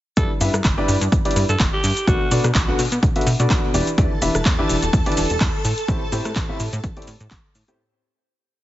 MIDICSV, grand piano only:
0, 0, Header, 1, 2, 480
1, 0, Start_track
1, 0, Tempo, 476190
1, 171, Time_signature, 4, 2, 24, 8
1, 8701, End_track
2, 0, Start_track
2, 0, Title_t, "Grand piano"
2, 0, Program_c, 0, 0
2, 171, Note_on_c, 0, 55, 79
2, 171, Note_on_c, 0, 62, 73
2, 171, Note_on_c, 0, 64, 74
2, 171, Note_on_c, 0, 67, 75
2, 171, Note_on_c, 0, 71, 74
2, 171, Note_on_c, 0, 74, 89
2, 295, Note_off_c, 0, 55, 0
2, 295, Note_off_c, 0, 62, 0
2, 295, Note_off_c, 0, 64, 0
2, 295, Note_off_c, 0, 67, 0
2, 295, Note_off_c, 0, 71, 0
2, 295, Note_off_c, 0, 74, 0
2, 411, Note_on_c, 0, 55, 76
2, 411, Note_on_c, 0, 62, 74
2, 411, Note_on_c, 0, 64, 73
2, 411, Note_on_c, 0, 67, 70
2, 411, Note_on_c, 0, 76, 86
2, 412, Note_on_c, 0, 71, 73
2, 535, Note_off_c, 0, 55, 0
2, 535, Note_off_c, 0, 62, 0
2, 535, Note_off_c, 0, 64, 0
2, 535, Note_off_c, 0, 67, 0
2, 535, Note_off_c, 0, 71, 0
2, 535, Note_off_c, 0, 76, 0
2, 782, Note_on_c, 0, 55, 99
2, 782, Note_on_c, 0, 64, 94
2, 783, Note_on_c, 0, 62, 94
2, 783, Note_on_c, 0, 67, 95
2, 783, Note_on_c, 0, 71, 95
2, 783, Note_on_c, 0, 74, 113
2, 958, Note_off_c, 0, 55, 0
2, 958, Note_off_c, 0, 62, 0
2, 958, Note_off_c, 0, 64, 0
2, 958, Note_off_c, 0, 67, 0
2, 958, Note_off_c, 0, 71, 0
2, 958, Note_off_c, 0, 74, 0
2, 1261, Note_on_c, 0, 55, 89
2, 1261, Note_on_c, 0, 62, 81
2, 1261, Note_on_c, 0, 67, 83
2, 1262, Note_on_c, 0, 64, 85
2, 1262, Note_on_c, 0, 71, 82
2, 1262, Note_on_c, 0, 74, 100
2, 1437, Note_off_c, 0, 55, 0
2, 1437, Note_off_c, 0, 62, 0
2, 1437, Note_off_c, 0, 64, 0
2, 1437, Note_off_c, 0, 67, 0
2, 1437, Note_off_c, 0, 71, 0
2, 1437, Note_off_c, 0, 74, 0
2, 2091, Note_on_c, 0, 47, 87
2, 2091, Note_on_c, 0, 62, 82
2, 2091, Note_on_c, 0, 66, 79
2, 2091, Note_on_c, 0, 69, 79
2, 2091, Note_on_c, 0, 71, 78
2, 2091, Note_on_c, 0, 74, 94
2, 2215, Note_off_c, 0, 47, 0
2, 2215, Note_off_c, 0, 62, 0
2, 2215, Note_off_c, 0, 66, 0
2, 2215, Note_off_c, 0, 69, 0
2, 2215, Note_off_c, 0, 71, 0
2, 2215, Note_off_c, 0, 74, 0
2, 2331, Note_on_c, 0, 47, 100
2, 2331, Note_on_c, 0, 62, 88
2, 2331, Note_on_c, 0, 66, 91
2, 2331, Note_on_c, 0, 69, 93
2, 2331, Note_on_c, 0, 71, 90
2, 2331, Note_on_c, 0, 74, 106
2, 2455, Note_off_c, 0, 47, 0
2, 2455, Note_off_c, 0, 62, 0
2, 2455, Note_off_c, 0, 66, 0
2, 2455, Note_off_c, 0, 69, 0
2, 2455, Note_off_c, 0, 71, 0
2, 2455, Note_off_c, 0, 74, 0
2, 2703, Note_on_c, 0, 62, 83
2, 2703, Note_on_c, 0, 66, 84
2, 2703, Note_on_c, 0, 69, 81
2, 2704, Note_on_c, 0, 47, 90
2, 2704, Note_on_c, 0, 71, 84
2, 2704, Note_on_c, 0, 78, 100
2, 2805, Note_off_c, 0, 47, 0
2, 2805, Note_off_c, 0, 62, 0
2, 2805, Note_off_c, 0, 66, 0
2, 2805, Note_off_c, 0, 69, 0
2, 2805, Note_off_c, 0, 78, 0
2, 2806, Note_off_c, 0, 71, 0
2, 3183, Note_on_c, 0, 62, 76
2, 3183, Note_on_c, 0, 66, 76
2, 3183, Note_on_c, 0, 69, 76
2, 3183, Note_on_c, 0, 71, 76
2, 3184, Note_on_c, 0, 47, 80
2, 3184, Note_on_c, 0, 76, 91
2, 3285, Note_off_c, 0, 47, 0
2, 3285, Note_off_c, 0, 62, 0
2, 3285, Note_off_c, 0, 66, 0
2, 3285, Note_off_c, 0, 69, 0
2, 3285, Note_off_c, 0, 71, 0
2, 3286, Note_off_c, 0, 76, 0
2, 3422, Note_on_c, 0, 62, 75
2, 3422, Note_on_c, 0, 66, 79
2, 3422, Note_on_c, 0, 69, 78
2, 3422, Note_on_c, 0, 71, 80
2, 3423, Note_on_c, 0, 47, 87
2, 3423, Note_on_c, 0, 74, 93
2, 3745, Note_off_c, 0, 47, 0
2, 3745, Note_off_c, 0, 62, 0
2, 3745, Note_off_c, 0, 66, 0
2, 3745, Note_off_c, 0, 69, 0
2, 3745, Note_off_c, 0, 71, 0
2, 3745, Note_off_c, 0, 74, 0
2, 3771, Note_on_c, 0, 52, 96
2, 3771, Note_on_c, 0, 62, 85
2, 3771, Note_on_c, 0, 64, 86
2, 3771, Note_on_c, 0, 67, 88
2, 3771, Note_on_c, 0, 71, 86
2, 3771, Note_on_c, 0, 74, 106
2, 3895, Note_off_c, 0, 52, 0
2, 3895, Note_off_c, 0, 62, 0
2, 3895, Note_off_c, 0, 64, 0
2, 3895, Note_off_c, 0, 67, 0
2, 3895, Note_off_c, 0, 71, 0
2, 3895, Note_off_c, 0, 74, 0
2, 4013, Note_on_c, 0, 52, 81
2, 4013, Note_on_c, 0, 62, 77
2, 4013, Note_on_c, 0, 64, 76
2, 4013, Note_on_c, 0, 67, 75
2, 4013, Note_on_c, 0, 71, 75
2, 4013, Note_on_c, 0, 74, 91
2, 4136, Note_off_c, 0, 52, 0
2, 4136, Note_off_c, 0, 62, 0
2, 4136, Note_off_c, 0, 64, 0
2, 4136, Note_off_c, 0, 67, 0
2, 4136, Note_off_c, 0, 71, 0
2, 4136, Note_off_c, 0, 74, 0
2, 4251, Note_on_c, 0, 64, 72
2, 4252, Note_on_c, 0, 52, 81
2, 4252, Note_on_c, 0, 62, 76
2, 4252, Note_on_c, 0, 67, 74
2, 4252, Note_on_c, 0, 71, 75
2, 4252, Note_on_c, 0, 76, 89
2, 4375, Note_off_c, 0, 52, 0
2, 4375, Note_off_c, 0, 62, 0
2, 4375, Note_off_c, 0, 64, 0
2, 4375, Note_off_c, 0, 67, 0
2, 4375, Note_off_c, 0, 71, 0
2, 4375, Note_off_c, 0, 76, 0
2, 4622, Note_on_c, 0, 71, 96
2, 4622, Note_on_c, 0, 74, 111
2, 4623, Note_on_c, 0, 52, 103
2, 4623, Note_on_c, 0, 62, 96
2, 4623, Note_on_c, 0, 64, 95
2, 4623, Note_on_c, 0, 67, 94
2, 4798, Note_off_c, 0, 52, 0
2, 4798, Note_off_c, 0, 62, 0
2, 4798, Note_off_c, 0, 64, 0
2, 4798, Note_off_c, 0, 67, 0
2, 4798, Note_off_c, 0, 71, 0
2, 4798, Note_off_c, 0, 74, 0
2, 5103, Note_on_c, 0, 52, 90
2, 5103, Note_on_c, 0, 62, 85
2, 5103, Note_on_c, 0, 64, 84
2, 5103, Note_on_c, 0, 67, 83
2, 5103, Note_on_c, 0, 71, 83
2, 5103, Note_on_c, 0, 74, 98
2, 5278, Note_off_c, 0, 52, 0
2, 5278, Note_off_c, 0, 62, 0
2, 5278, Note_off_c, 0, 64, 0
2, 5278, Note_off_c, 0, 67, 0
2, 5278, Note_off_c, 0, 71, 0
2, 5278, Note_off_c, 0, 74, 0
2, 5931, Note_on_c, 0, 45, 89
2, 5931, Note_on_c, 0, 60, 80
2, 5931, Note_on_c, 0, 64, 80
2, 5931, Note_on_c, 0, 67, 83
2, 5931, Note_on_c, 0, 69, 81
2, 5931, Note_on_c, 0, 72, 97
2, 6055, Note_off_c, 0, 45, 0
2, 6055, Note_off_c, 0, 60, 0
2, 6055, Note_off_c, 0, 64, 0
2, 6055, Note_off_c, 0, 67, 0
2, 6055, Note_off_c, 0, 69, 0
2, 6055, Note_off_c, 0, 72, 0
2, 6171, Note_on_c, 0, 45, 99
2, 6171, Note_on_c, 0, 60, 91
2, 6171, Note_on_c, 0, 64, 93
2, 6171, Note_on_c, 0, 67, 93
2, 6171, Note_on_c, 0, 69, 93
2, 6171, Note_on_c, 0, 72, 111
2, 6295, Note_off_c, 0, 45, 0
2, 6295, Note_off_c, 0, 60, 0
2, 6295, Note_off_c, 0, 64, 0
2, 6295, Note_off_c, 0, 67, 0
2, 6295, Note_off_c, 0, 69, 0
2, 6295, Note_off_c, 0, 72, 0
2, 6542, Note_on_c, 0, 45, 90
2, 6542, Note_on_c, 0, 60, 82
2, 6542, Note_on_c, 0, 64, 84
2, 6542, Note_on_c, 0, 67, 84
2, 6542, Note_on_c, 0, 69, 85
2, 6543, Note_on_c, 0, 76, 100
2, 6645, Note_off_c, 0, 45, 0
2, 6645, Note_off_c, 0, 60, 0
2, 6645, Note_off_c, 0, 64, 0
2, 6645, Note_off_c, 0, 67, 0
2, 6645, Note_off_c, 0, 69, 0
2, 6645, Note_off_c, 0, 76, 0
2, 7022, Note_on_c, 0, 60, 79
2, 7022, Note_on_c, 0, 67, 76
2, 7023, Note_on_c, 0, 45, 85
2, 7023, Note_on_c, 0, 64, 76
2, 7023, Note_on_c, 0, 69, 74
2, 7023, Note_on_c, 0, 74, 92
2, 7125, Note_off_c, 0, 45, 0
2, 7125, Note_off_c, 0, 60, 0
2, 7125, Note_off_c, 0, 64, 0
2, 7125, Note_off_c, 0, 67, 0
2, 7125, Note_off_c, 0, 69, 0
2, 7125, Note_off_c, 0, 74, 0
2, 7743, Note_on_c, 0, 45, 94
2, 7743, Note_on_c, 0, 60, 85
2, 7743, Note_on_c, 0, 64, 85
2, 7743, Note_on_c, 0, 67, 88
2, 7743, Note_on_c, 0, 69, 84
2, 7743, Note_on_c, 0, 72, 102
2, 7835, Note_off_c, 0, 45, 0
2, 7835, Note_off_c, 0, 60, 0
2, 7835, Note_off_c, 0, 64, 0
2, 7835, Note_off_c, 0, 67, 0
2, 7835, Note_off_c, 0, 69, 0
2, 7835, Note_off_c, 0, 72, 0
2, 8701, End_track
0, 0, End_of_file